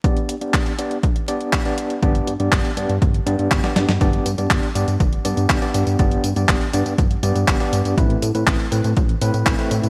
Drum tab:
HH |xxxxxxxxxxxxxxxx|xxxxxxxxxxxxxxxx|xxxxxxxxxxxxxxxx|xxxxxxxxxxxxxxxx|
TB |----------------|----------------|x-xxx-xxx-xxx-xx|x-xx--xxx-xxx-xx|
CP |----x-------x---|----x-------x---|----x-------x---|----x-------x---|
SD |----------------|-------------ooo|----------------|----------------|
BD |o---o---o---o---|o---o---o---o---|o---o---o---o---|o---o---o---o---|

HH |xxxxxxxxxxxxxxxx|
TB |x-xxx-xxx-xx--xx|
CP |----x-------x---|
SD |----------------|
BD |o---o---o---o---|